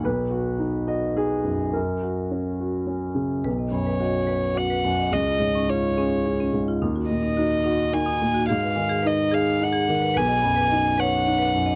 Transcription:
<<
  \new Staff \with { instrumentName = "Violin" } { \time 3/4 \key b \lydian \tempo 4 = 108 r2. | r2. | r8 cis''4. fis''4 | dis''4 cis''4. r8 |
r8 dis''4. gis''4 | eis''4 dis''8 eis''8 fis''4 | gis''4. fis''4. | }
  \new Staff \with { instrumentName = "Marimba" } { \time 3/4 \key b \lydian r2. | r2. | b'16 dis''16 b''16 b'16 dis''16 r16 b'16 r16 fis''16 b'16 r16 dis''16 | cis'16 eis'16 cis''16 cis'16 eis'16 r16 cis'16 r16 gis'16 cis'16 r16 eis'16 |
dis'16 fis'16 dis''16 dis'16 fis'16 r16 dis'16 r16 ais'16 dis'16 r16 fis'16 | gis'16 b'16 gis''16 gis'16 b'16 r16 gis'16 r16 dis''16 gis'16 r16 b'16 | b'16 dis''16 b''16 b'16 dis''16 r16 b'16 r16 fis''16 b'16 r16 dis''16 | }
  \new Staff \with { instrumentName = "Grand piano" } { \time 3/4 \key b \lydian << { b'4. dis''8 gis'4 | ais'2 r4 | r2. | r2. |
r2. | r2. | r2. | } \\ { b,,8 fis'8 dis'8 fis'8 dis'8 fis,8 | fis,8 fis'8 cis'8 fis'8 cis'8 cis8 | b,,8 fis,8 fis'8 b'8 fis'8 fis,8 | cis,8 gis,8 eis'8 gis'8 eis'8 gis,8 |
dis,8 ais,8 dis'8 fis'8 dis'8 ais,8 | gis,8 dis8 dis'8 gis'8 dis'8 dis8 | b,,8 fis,8 dis'8 cis''8 dis'8 fis,8 | } >> }
>>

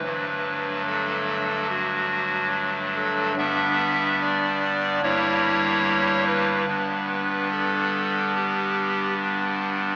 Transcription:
<<
  \new Staff \with { instrumentName = "Pipe organ" } { \time 4/4 \key g \major \tempo 4 = 73 b'4 a'4 fis'4 r8 a'8 | e''4 d''4 des''4. b'8~ | b'4 a'4 g'4 r4 | }
  \new Staff \with { instrumentName = "Pipe organ" } { \clef bass \time 4/4 \key g \major <g,, g, fis a d'>1 | <g,, g, g b d'>2 <g,, g, g bes e'>2 | <g,, g, g b d'>1 | }
>>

